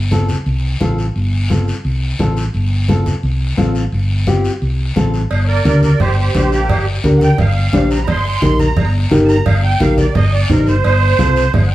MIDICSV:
0, 0, Header, 1, 5, 480
1, 0, Start_track
1, 0, Key_signature, -2, "minor"
1, 0, Tempo, 346220
1, 1599, Time_signature, 4, 2, 24, 8
1, 16286, End_track
2, 0, Start_track
2, 0, Title_t, "Accordion"
2, 0, Program_c, 0, 21
2, 7536, Note_on_c, 0, 73, 62
2, 7572, Note_off_c, 0, 73, 0
2, 7594, Note_on_c, 0, 70, 77
2, 7606, Note_on_c, 0, 74, 92
2, 7808, Note_off_c, 0, 70, 0
2, 7819, Note_off_c, 0, 74, 0
2, 7828, Note_on_c, 0, 70, 73
2, 7840, Note_on_c, 0, 74, 85
2, 8051, Note_off_c, 0, 70, 0
2, 8055, Note_off_c, 0, 74, 0
2, 8071, Note_on_c, 0, 70, 68
2, 8075, Note_on_c, 0, 74, 77
2, 8299, Note_off_c, 0, 70, 0
2, 8310, Note_off_c, 0, 74, 0
2, 8315, Note_on_c, 0, 67, 74
2, 8322, Note_on_c, 0, 72, 86
2, 8540, Note_off_c, 0, 67, 0
2, 8548, Note_off_c, 0, 72, 0
2, 8564, Note_on_c, 0, 67, 57
2, 8569, Note_on_c, 0, 72, 67
2, 8779, Note_off_c, 0, 67, 0
2, 8788, Note_off_c, 0, 72, 0
2, 8800, Note_on_c, 0, 67, 65
2, 8809, Note_on_c, 0, 72, 73
2, 9018, Note_off_c, 0, 67, 0
2, 9035, Note_on_c, 0, 58, 82
2, 9037, Note_off_c, 0, 72, 0
2, 9039, Note_on_c, 0, 67, 91
2, 9483, Note_off_c, 0, 58, 0
2, 9505, Note_off_c, 0, 67, 0
2, 9953, Note_on_c, 0, 78, 68
2, 9985, Note_off_c, 0, 78, 0
2, 10015, Note_on_c, 0, 79, 92
2, 10240, Note_off_c, 0, 79, 0
2, 10255, Note_on_c, 0, 77, 81
2, 10945, Note_off_c, 0, 77, 0
2, 10970, Note_on_c, 0, 82, 76
2, 11150, Note_on_c, 0, 83, 64
2, 11183, Note_off_c, 0, 83, 0
2, 11197, Note_off_c, 0, 82, 0
2, 11218, Note_on_c, 0, 84, 95
2, 11906, Note_off_c, 0, 84, 0
2, 11916, Note_on_c, 0, 82, 92
2, 12382, Note_off_c, 0, 82, 0
2, 12818, Note_on_c, 0, 81, 72
2, 12853, Note_off_c, 0, 81, 0
2, 12873, Note_on_c, 0, 82, 106
2, 13108, Note_off_c, 0, 82, 0
2, 13122, Note_on_c, 0, 77, 90
2, 13352, Note_off_c, 0, 77, 0
2, 13363, Note_on_c, 0, 79, 89
2, 13593, Note_off_c, 0, 79, 0
2, 13596, Note_on_c, 0, 77, 87
2, 13827, Note_on_c, 0, 74, 71
2, 13829, Note_off_c, 0, 77, 0
2, 14064, Note_off_c, 0, 74, 0
2, 14078, Note_on_c, 0, 75, 89
2, 14310, Note_off_c, 0, 75, 0
2, 14316, Note_on_c, 0, 74, 73
2, 14549, Note_off_c, 0, 74, 0
2, 14562, Note_on_c, 0, 70, 82
2, 14792, Note_off_c, 0, 70, 0
2, 14805, Note_on_c, 0, 72, 82
2, 15024, Note_off_c, 0, 72, 0
2, 15045, Note_on_c, 0, 72, 106
2, 15971, Note_off_c, 0, 72, 0
2, 16176, Note_on_c, 0, 78, 60
2, 16211, Note_off_c, 0, 78, 0
2, 16241, Note_on_c, 0, 79, 92
2, 16286, Note_off_c, 0, 79, 0
2, 16286, End_track
3, 0, Start_track
3, 0, Title_t, "Nylon-string guitar"
3, 0, Program_c, 1, 24
3, 155, Note_on_c, 1, 60, 75
3, 165, Note_on_c, 1, 65, 72
3, 165, Note_on_c, 1, 69, 84
3, 494, Note_off_c, 1, 60, 0
3, 495, Note_off_c, 1, 65, 0
3, 498, Note_off_c, 1, 69, 0
3, 1115, Note_on_c, 1, 60, 84
3, 1124, Note_on_c, 1, 65, 78
3, 1128, Note_on_c, 1, 69, 89
3, 1454, Note_off_c, 1, 60, 0
3, 1456, Note_off_c, 1, 65, 0
3, 1460, Note_off_c, 1, 69, 0
3, 2078, Note_on_c, 1, 60, 79
3, 2086, Note_on_c, 1, 65, 69
3, 2093, Note_on_c, 1, 69, 86
3, 2414, Note_off_c, 1, 60, 0
3, 2418, Note_off_c, 1, 65, 0
3, 2422, Note_off_c, 1, 69, 0
3, 3041, Note_on_c, 1, 60, 84
3, 3045, Note_on_c, 1, 65, 76
3, 3055, Note_on_c, 1, 69, 87
3, 3376, Note_off_c, 1, 60, 0
3, 3379, Note_off_c, 1, 65, 0
3, 3381, Note_off_c, 1, 69, 0
3, 3998, Note_on_c, 1, 60, 74
3, 4006, Note_on_c, 1, 65, 72
3, 4012, Note_on_c, 1, 69, 89
3, 4334, Note_off_c, 1, 60, 0
3, 4339, Note_off_c, 1, 65, 0
3, 4342, Note_off_c, 1, 69, 0
3, 4954, Note_on_c, 1, 60, 86
3, 4961, Note_on_c, 1, 65, 76
3, 4968, Note_on_c, 1, 69, 96
3, 5293, Note_off_c, 1, 60, 0
3, 5297, Note_off_c, 1, 65, 0
3, 5300, Note_off_c, 1, 69, 0
3, 5918, Note_on_c, 1, 60, 72
3, 5925, Note_on_c, 1, 65, 70
3, 5927, Note_on_c, 1, 67, 82
3, 6255, Note_off_c, 1, 60, 0
3, 6258, Note_off_c, 1, 65, 0
3, 6260, Note_off_c, 1, 67, 0
3, 6876, Note_on_c, 1, 60, 83
3, 6884, Note_on_c, 1, 65, 74
3, 6890, Note_on_c, 1, 69, 93
3, 7214, Note_off_c, 1, 60, 0
3, 7218, Note_off_c, 1, 65, 0
3, 7221, Note_off_c, 1, 69, 0
3, 7831, Note_on_c, 1, 62, 65
3, 7837, Note_on_c, 1, 67, 62
3, 7843, Note_on_c, 1, 70, 78
3, 8172, Note_off_c, 1, 62, 0
3, 8175, Note_off_c, 1, 67, 0
3, 8178, Note_off_c, 1, 70, 0
3, 8800, Note_on_c, 1, 62, 74
3, 8806, Note_on_c, 1, 67, 66
3, 8811, Note_on_c, 1, 72, 77
3, 9136, Note_off_c, 1, 62, 0
3, 9137, Note_off_c, 1, 67, 0
3, 9141, Note_off_c, 1, 72, 0
3, 9758, Note_on_c, 1, 62, 86
3, 9767, Note_on_c, 1, 67, 80
3, 9769, Note_on_c, 1, 70, 91
3, 10095, Note_off_c, 1, 62, 0
3, 10098, Note_off_c, 1, 67, 0
3, 10100, Note_off_c, 1, 70, 0
3, 10720, Note_on_c, 1, 62, 79
3, 10727, Note_on_c, 1, 67, 68
3, 10736, Note_on_c, 1, 72, 83
3, 11055, Note_off_c, 1, 62, 0
3, 11059, Note_off_c, 1, 67, 0
3, 11062, Note_off_c, 1, 72, 0
3, 11672, Note_on_c, 1, 63, 69
3, 11677, Note_on_c, 1, 67, 67
3, 11682, Note_on_c, 1, 70, 78
3, 12011, Note_off_c, 1, 63, 0
3, 12013, Note_off_c, 1, 67, 0
3, 12016, Note_off_c, 1, 70, 0
3, 12629, Note_on_c, 1, 63, 93
3, 12635, Note_on_c, 1, 67, 84
3, 12639, Note_on_c, 1, 70, 104
3, 12969, Note_off_c, 1, 63, 0
3, 12971, Note_off_c, 1, 67, 0
3, 12974, Note_off_c, 1, 70, 0
3, 13587, Note_on_c, 1, 63, 75
3, 13598, Note_on_c, 1, 67, 67
3, 13601, Note_on_c, 1, 70, 78
3, 13929, Note_off_c, 1, 63, 0
3, 13931, Note_off_c, 1, 67, 0
3, 13935, Note_off_c, 1, 70, 0
3, 14555, Note_on_c, 1, 63, 80
3, 14561, Note_on_c, 1, 67, 70
3, 14567, Note_on_c, 1, 72, 85
3, 14892, Note_off_c, 1, 63, 0
3, 14893, Note_off_c, 1, 67, 0
3, 14897, Note_off_c, 1, 72, 0
3, 15506, Note_on_c, 1, 60, 71
3, 15513, Note_on_c, 1, 65, 64
3, 15521, Note_on_c, 1, 69, 77
3, 15847, Note_off_c, 1, 60, 0
3, 15850, Note_off_c, 1, 65, 0
3, 15853, Note_off_c, 1, 69, 0
3, 16286, End_track
4, 0, Start_track
4, 0, Title_t, "Fingered electric bass"
4, 0, Program_c, 2, 33
4, 0, Note_on_c, 2, 31, 90
4, 446, Note_off_c, 2, 31, 0
4, 641, Note_on_c, 2, 36, 88
4, 1024, Note_off_c, 2, 36, 0
4, 1121, Note_on_c, 2, 33, 84
4, 1505, Note_off_c, 2, 33, 0
4, 1605, Note_on_c, 2, 31, 90
4, 2370, Note_off_c, 2, 31, 0
4, 2562, Note_on_c, 2, 36, 83
4, 2945, Note_off_c, 2, 36, 0
4, 3046, Note_on_c, 2, 33, 88
4, 3427, Note_off_c, 2, 33, 0
4, 3524, Note_on_c, 2, 31, 87
4, 4290, Note_off_c, 2, 31, 0
4, 4483, Note_on_c, 2, 36, 90
4, 4866, Note_off_c, 2, 36, 0
4, 4964, Note_on_c, 2, 33, 88
4, 5346, Note_off_c, 2, 33, 0
4, 5440, Note_on_c, 2, 31, 84
4, 6208, Note_off_c, 2, 31, 0
4, 6404, Note_on_c, 2, 36, 84
4, 6786, Note_off_c, 2, 36, 0
4, 6882, Note_on_c, 2, 33, 87
4, 7265, Note_off_c, 2, 33, 0
4, 7360, Note_on_c, 2, 31, 86
4, 7744, Note_off_c, 2, 31, 0
4, 7838, Note_on_c, 2, 38, 98
4, 8223, Note_off_c, 2, 38, 0
4, 8322, Note_on_c, 2, 31, 89
4, 8705, Note_off_c, 2, 31, 0
4, 8803, Note_on_c, 2, 34, 85
4, 9287, Note_off_c, 2, 34, 0
4, 9287, Note_on_c, 2, 31, 93
4, 9668, Note_off_c, 2, 31, 0
4, 9766, Note_on_c, 2, 38, 94
4, 10147, Note_off_c, 2, 38, 0
4, 10248, Note_on_c, 2, 31, 91
4, 10628, Note_off_c, 2, 31, 0
4, 10731, Note_on_c, 2, 34, 80
4, 11207, Note_off_c, 2, 34, 0
4, 11207, Note_on_c, 2, 31, 88
4, 11588, Note_off_c, 2, 31, 0
4, 11684, Note_on_c, 2, 34, 101
4, 12065, Note_off_c, 2, 34, 0
4, 12159, Note_on_c, 2, 31, 100
4, 12542, Note_off_c, 2, 31, 0
4, 12640, Note_on_c, 2, 31, 89
4, 13023, Note_off_c, 2, 31, 0
4, 13116, Note_on_c, 2, 31, 100
4, 13501, Note_off_c, 2, 31, 0
4, 13597, Note_on_c, 2, 34, 99
4, 13981, Note_off_c, 2, 34, 0
4, 14075, Note_on_c, 2, 31, 96
4, 14459, Note_off_c, 2, 31, 0
4, 14557, Note_on_c, 2, 33, 76
4, 14773, Note_off_c, 2, 33, 0
4, 14799, Note_on_c, 2, 31, 85
4, 15014, Note_off_c, 2, 31, 0
4, 15038, Note_on_c, 2, 31, 98
4, 15421, Note_off_c, 2, 31, 0
4, 15515, Note_on_c, 2, 36, 97
4, 15899, Note_off_c, 2, 36, 0
4, 15996, Note_on_c, 2, 31, 95
4, 16286, Note_off_c, 2, 31, 0
4, 16286, End_track
5, 0, Start_track
5, 0, Title_t, "Drums"
5, 160, Note_on_c, 9, 73, 68
5, 163, Note_on_c, 9, 63, 71
5, 298, Note_off_c, 9, 73, 0
5, 301, Note_off_c, 9, 63, 0
5, 396, Note_on_c, 9, 73, 68
5, 403, Note_on_c, 9, 63, 66
5, 534, Note_off_c, 9, 73, 0
5, 541, Note_off_c, 9, 63, 0
5, 639, Note_on_c, 9, 74, 64
5, 778, Note_off_c, 9, 74, 0
5, 1120, Note_on_c, 9, 63, 75
5, 1125, Note_on_c, 9, 73, 62
5, 1259, Note_off_c, 9, 63, 0
5, 1264, Note_off_c, 9, 73, 0
5, 1364, Note_on_c, 9, 73, 64
5, 1503, Note_off_c, 9, 73, 0
5, 1604, Note_on_c, 9, 74, 66
5, 1743, Note_off_c, 9, 74, 0
5, 2082, Note_on_c, 9, 63, 78
5, 2089, Note_on_c, 9, 73, 68
5, 2221, Note_off_c, 9, 63, 0
5, 2228, Note_off_c, 9, 73, 0
5, 2329, Note_on_c, 9, 73, 64
5, 2467, Note_off_c, 9, 73, 0
5, 2562, Note_on_c, 9, 74, 69
5, 2701, Note_off_c, 9, 74, 0
5, 3042, Note_on_c, 9, 73, 63
5, 3043, Note_on_c, 9, 63, 75
5, 3181, Note_off_c, 9, 73, 0
5, 3182, Note_off_c, 9, 63, 0
5, 3281, Note_on_c, 9, 73, 68
5, 3420, Note_off_c, 9, 73, 0
5, 3523, Note_on_c, 9, 74, 67
5, 3661, Note_off_c, 9, 74, 0
5, 4006, Note_on_c, 9, 73, 66
5, 4007, Note_on_c, 9, 63, 75
5, 4145, Note_off_c, 9, 63, 0
5, 4145, Note_off_c, 9, 73, 0
5, 4242, Note_on_c, 9, 63, 67
5, 4245, Note_on_c, 9, 73, 66
5, 4381, Note_off_c, 9, 63, 0
5, 4383, Note_off_c, 9, 73, 0
5, 4483, Note_on_c, 9, 74, 70
5, 4621, Note_off_c, 9, 74, 0
5, 4961, Note_on_c, 9, 73, 61
5, 4962, Note_on_c, 9, 63, 76
5, 5100, Note_off_c, 9, 73, 0
5, 5101, Note_off_c, 9, 63, 0
5, 5200, Note_on_c, 9, 73, 65
5, 5339, Note_off_c, 9, 73, 0
5, 5441, Note_on_c, 9, 74, 67
5, 5580, Note_off_c, 9, 74, 0
5, 5917, Note_on_c, 9, 63, 71
5, 5918, Note_on_c, 9, 73, 68
5, 6056, Note_off_c, 9, 63, 0
5, 6057, Note_off_c, 9, 73, 0
5, 6159, Note_on_c, 9, 73, 68
5, 6298, Note_off_c, 9, 73, 0
5, 6403, Note_on_c, 9, 74, 67
5, 6542, Note_off_c, 9, 74, 0
5, 6879, Note_on_c, 9, 73, 64
5, 6880, Note_on_c, 9, 63, 79
5, 7017, Note_off_c, 9, 73, 0
5, 7018, Note_off_c, 9, 63, 0
5, 7121, Note_on_c, 9, 73, 63
5, 7260, Note_off_c, 9, 73, 0
5, 7357, Note_on_c, 9, 56, 98
5, 7362, Note_on_c, 9, 74, 70
5, 7496, Note_off_c, 9, 56, 0
5, 7501, Note_off_c, 9, 74, 0
5, 7839, Note_on_c, 9, 63, 82
5, 7842, Note_on_c, 9, 73, 68
5, 7978, Note_off_c, 9, 63, 0
5, 7981, Note_off_c, 9, 73, 0
5, 8079, Note_on_c, 9, 63, 66
5, 8080, Note_on_c, 9, 73, 67
5, 8218, Note_off_c, 9, 63, 0
5, 8218, Note_off_c, 9, 73, 0
5, 8316, Note_on_c, 9, 64, 81
5, 8320, Note_on_c, 9, 56, 74
5, 8322, Note_on_c, 9, 74, 73
5, 8455, Note_off_c, 9, 64, 0
5, 8458, Note_off_c, 9, 56, 0
5, 8460, Note_off_c, 9, 74, 0
5, 8798, Note_on_c, 9, 63, 81
5, 8798, Note_on_c, 9, 66, 71
5, 8802, Note_on_c, 9, 73, 66
5, 8937, Note_off_c, 9, 63, 0
5, 8937, Note_off_c, 9, 66, 0
5, 8941, Note_off_c, 9, 73, 0
5, 9044, Note_on_c, 9, 73, 67
5, 9183, Note_off_c, 9, 73, 0
5, 9281, Note_on_c, 9, 56, 96
5, 9282, Note_on_c, 9, 64, 68
5, 9286, Note_on_c, 9, 74, 71
5, 9419, Note_off_c, 9, 56, 0
5, 9420, Note_off_c, 9, 64, 0
5, 9425, Note_off_c, 9, 74, 0
5, 9759, Note_on_c, 9, 63, 74
5, 9761, Note_on_c, 9, 73, 65
5, 9898, Note_off_c, 9, 63, 0
5, 9899, Note_off_c, 9, 73, 0
5, 9998, Note_on_c, 9, 63, 69
5, 10003, Note_on_c, 9, 73, 67
5, 10137, Note_off_c, 9, 63, 0
5, 10142, Note_off_c, 9, 73, 0
5, 10236, Note_on_c, 9, 56, 77
5, 10236, Note_on_c, 9, 64, 81
5, 10244, Note_on_c, 9, 74, 74
5, 10375, Note_off_c, 9, 56, 0
5, 10375, Note_off_c, 9, 64, 0
5, 10383, Note_off_c, 9, 74, 0
5, 10716, Note_on_c, 9, 63, 82
5, 10720, Note_on_c, 9, 66, 69
5, 10722, Note_on_c, 9, 73, 68
5, 10855, Note_off_c, 9, 63, 0
5, 10858, Note_off_c, 9, 66, 0
5, 10860, Note_off_c, 9, 73, 0
5, 10960, Note_on_c, 9, 73, 68
5, 11099, Note_off_c, 9, 73, 0
5, 11194, Note_on_c, 9, 64, 70
5, 11199, Note_on_c, 9, 56, 104
5, 11202, Note_on_c, 9, 74, 72
5, 11333, Note_off_c, 9, 64, 0
5, 11337, Note_off_c, 9, 56, 0
5, 11341, Note_off_c, 9, 74, 0
5, 11675, Note_on_c, 9, 63, 85
5, 11680, Note_on_c, 9, 73, 75
5, 11813, Note_off_c, 9, 63, 0
5, 11818, Note_off_c, 9, 73, 0
5, 11913, Note_on_c, 9, 63, 68
5, 11918, Note_on_c, 9, 73, 65
5, 12052, Note_off_c, 9, 63, 0
5, 12057, Note_off_c, 9, 73, 0
5, 12152, Note_on_c, 9, 64, 79
5, 12153, Note_on_c, 9, 74, 74
5, 12156, Note_on_c, 9, 56, 75
5, 12291, Note_off_c, 9, 64, 0
5, 12292, Note_off_c, 9, 74, 0
5, 12294, Note_off_c, 9, 56, 0
5, 12634, Note_on_c, 9, 63, 82
5, 12638, Note_on_c, 9, 73, 66
5, 12773, Note_off_c, 9, 63, 0
5, 12776, Note_off_c, 9, 73, 0
5, 12874, Note_on_c, 9, 73, 67
5, 13013, Note_off_c, 9, 73, 0
5, 13114, Note_on_c, 9, 56, 96
5, 13114, Note_on_c, 9, 74, 75
5, 13115, Note_on_c, 9, 64, 70
5, 13252, Note_off_c, 9, 74, 0
5, 13253, Note_off_c, 9, 56, 0
5, 13254, Note_off_c, 9, 64, 0
5, 13592, Note_on_c, 9, 73, 71
5, 13595, Note_on_c, 9, 63, 82
5, 13731, Note_off_c, 9, 73, 0
5, 13734, Note_off_c, 9, 63, 0
5, 13832, Note_on_c, 9, 73, 70
5, 13835, Note_on_c, 9, 63, 72
5, 13971, Note_off_c, 9, 73, 0
5, 13974, Note_off_c, 9, 63, 0
5, 14072, Note_on_c, 9, 56, 77
5, 14073, Note_on_c, 9, 74, 76
5, 14077, Note_on_c, 9, 64, 83
5, 14210, Note_off_c, 9, 56, 0
5, 14212, Note_off_c, 9, 74, 0
5, 14215, Note_off_c, 9, 64, 0
5, 14552, Note_on_c, 9, 63, 80
5, 14552, Note_on_c, 9, 64, 67
5, 14554, Note_on_c, 9, 73, 64
5, 14690, Note_off_c, 9, 63, 0
5, 14690, Note_off_c, 9, 64, 0
5, 14692, Note_off_c, 9, 73, 0
5, 14792, Note_on_c, 9, 73, 73
5, 14931, Note_off_c, 9, 73, 0
5, 15032, Note_on_c, 9, 74, 74
5, 15035, Note_on_c, 9, 56, 100
5, 15171, Note_off_c, 9, 74, 0
5, 15174, Note_off_c, 9, 56, 0
5, 15511, Note_on_c, 9, 73, 71
5, 15513, Note_on_c, 9, 63, 81
5, 15650, Note_off_c, 9, 73, 0
5, 15652, Note_off_c, 9, 63, 0
5, 15751, Note_on_c, 9, 73, 70
5, 15890, Note_off_c, 9, 73, 0
5, 15992, Note_on_c, 9, 74, 70
5, 15997, Note_on_c, 9, 56, 78
5, 15997, Note_on_c, 9, 64, 87
5, 16131, Note_off_c, 9, 74, 0
5, 16135, Note_off_c, 9, 56, 0
5, 16135, Note_off_c, 9, 64, 0
5, 16286, End_track
0, 0, End_of_file